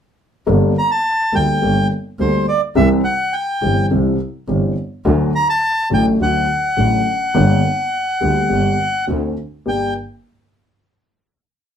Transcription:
0.46 G1 G2 G3 A#3 D4 A4
0.78 A#5
0.91 A5
1.32 D2 D3 G3 A#3 D4 A4 G5
1.62 G1 G2 G3 A#3 D4 A4
2.19 D2 D3 G3 A#3 D4 A4 C5
2.49 D5
2.75 C2 C3 E3 G3 C4 G4 E5
3.04 F#5
3.33 G5
3.62 G1 G2 E3 G3 C4 G4
3.90 C2 C3 E3 G3 C4 G4
4.47 G1 G2 E3 G3 C4 G4
5.05 D2 D3 F#3 A3 F#4
5.35 A#5
5.50 A5
5.90 A1 A2 D3 F#3 A3 F#4 G5
6.19 D2 D3 F#3 A3 F#4 F#5
6.77 A1 A2 D3 F#3 A3 F#4
7.34 G1 G2 D3 G3 A#3 G4
8.20 D2 D3 G3 A#3 G4
8.49 G1 G2 D3 G3 A#3 G4
9.07 D2 D3 A3 C4 F#4
9.66 G1 G2 A#3 D4 G4 G5

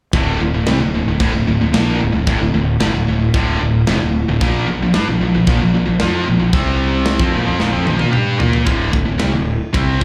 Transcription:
0.13 D1 D2 A2 D3, kick, crash
0.41 D1 D2 A2
0.54 D1 D2 A2
0.66 C2 C3 G3, snare, crash
0.80 D1 D2 A2
0.94 D1 D2 A2
1.07 D1 D2 A2
1.20 D1 D2 A2, kick, crash
1.33 D1 D2 A2
1.46 D1 D2 A2
1.61 D1 D2 A2
1.73 A#1 A#2 F3 A#3, snare, crash
2.00 D1 D2 A2
2.12 D1 D2 A2
2.27 D1 D2 A2, kick, crash
2.40 D1 D2 A2
2.53 D1 D2 A2
2.80 G1 G2 D3, snare, crash
2.94 D1 D2 A2
3.08 D1 D2 A2
3.34 D1 D2 A2 D3, kick, crash
3.60 D1 D2 A2
3.87 F1 F2 C3, snare, crash
4.01 D1 D2 A2
4.28 D1 D2 A2
4.41 A#1 A#2 F3 A#3, kick, crash
4.68 A#1 A#2 F3
4.82 A#1 A#2 F3
4.94 G2 G3 D4, snare, crash
5.08 A#1 A#2 F3
5.21 A#1 A#2 F3
5.35 A#1 A#2 F3
5.47 A#1 A#2 F3, kick, crash
5.61 A#1 A#2 F3
5.74 A#1 A#2 F3
5.86 A#1 A#2 F3
6.00 F2 F3 C4 F4, snare, crash
6.26 A#1 A#2 F3
6.40 A#1 A#2 F3
6.53 C2 C3 G3 C4, kick, crash
7.05 snare, crash
7.20 F2 F3 C4, kick
7.32 A#1 A#2 F3
7.46 F2 F3 C4
7.58 A#1 A#2 F3, snare
7.72 F2 F3 C4
7.85 A#1 A#2 F3, high tom
7.98 A#3 F4, high tom
8.03 A#2
8.12 G3 D4 G4, mid tom
8.16 G2
8.39 A#2 A#3 F4 A#4, floor tom
8.53 floor tom
8.66 D1 D2 A2 D3, kick, ride bell
8.93 D1 D2 A2, kick
9.06 D1 D2 A2
9.18 C2 C3 G3, snare, ride bell
9.33 D1 D2 A2
9.73 C2 C3 G3 C4, kick, ride bell
10.00 D2

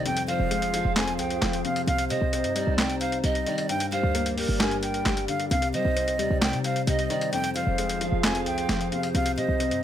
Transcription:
0.06 F2 F3 F4 G#4 C5 G5, closed hi-hat
0.17 closed hi-hat
0.28 F3 C5 F5, closed hi-hat
0.40 F1
0.51 G#3, closed hi-hat
0.62 closed hi-hat
0.74 F3 F5, closed hi-hat
0.85 F1
0.96 F2 G#5, snare, clap, closed hi-hat
1.08 closed hi-hat
1.19 C2 G5, closed hi-hat
1.30 closed hi-hat
1.42 F1 F3, snare, clap, closed hi-hat
1.53 closed hi-hat
1.65 C3 F5, closed hi-hat
1.76 closed hi-hat
1.87 C2 C3 G3 D#4 C5 F5, closed hi-hat
1.98 closed hi-hat
2.10 C3 G3 C5 D#5, closed hi-hat
2.22 C2
2.33 C4, closed hi-hat
2.44 G2, closed hi-hat
2.56 G3 D5, closed hi-hat
2.67 C2
2.77 C3 G5, snare, clap, closed hi-hat
2.90 closed hi-hat
3.01 C5 F5, closed hi-hat
3.12 closed hi-hat
3.24 C2 G3 D#5, closed hi-hat
3.35 closed hi-hat
3.46 D#3 D5, closed hi-hat
3.58 closed hi-hat
3.69 G2 G4 A#4 D5 G5, closed hi-hat
3.80 closed hi-hat
3.92 G3 C5 F5, closed hi-hat
4.03 D2
4.15 A#3, closed hi-hat
4.26 closed hi-hat
4.37 G3 A#4, open hi-hat
4.49 G1
4.60 G2 G#5, snare, clap, closed hi-hat
4.71 closed hi-hat
4.83 G5, closed hi-hat
4.94 closed hi-hat
5.05 G1 G3, snare, clap, closed hi-hat
5.17 closed hi-hat
5.28 D3 F5, closed hi-hat
5.40 closed hi-hat
5.51 C2 C3 D#4 C5 F5, closed hi-hat
5.62 closed hi-hat
5.74 G3 C5 D#5, closed hi-hat
5.85 C2
5.96 C4, closed hi-hat
6.08 closed hi-hat
6.19 D#2 G3 D5, closed hi-hat
6.31 C2
6.42 C3 G5, snare, clap, closed hi-hat
6.53 C3, closed hi-hat
6.64 C5 F5, closed hi-hat
6.76 closed hi-hat
6.87 C2 G3 D#5, closed hi-hat
6.99 closed hi-hat
7.10 D#3 D5, closed hi-hat
7.21 closed hi-hat
7.33 F2 F3 F4 G#4 G5, closed hi-hat
7.44 closed hi-hat
7.55 F3 C5 F5, closed hi-hat
7.67 F1
7.78 G#3, closed hi-hat
7.89 closed hi-hat
8.01 F3 F5, closed hi-hat
8.12 F1
8.23 F2 G#5, snare, clap, closed hi-hat
8.35 closed hi-hat
8.46 C2 G5, closed hi-hat
8.58 closed hi-hat
8.69 F1 F3, snare, clap, closed hi-hat
8.81 closed hi-hat
8.92 C3 F5, closed hi-hat
9.03 closed hi-hat
9.14 C2 C3 G3 D#4 F5, closed hi-hat
9.26 closed hi-hat
9.37 C3 G3 C5 D#5, closed hi-hat
9.49 C2
9.60 C4, closed hi-hat
9.71 G2, closed hi-hat

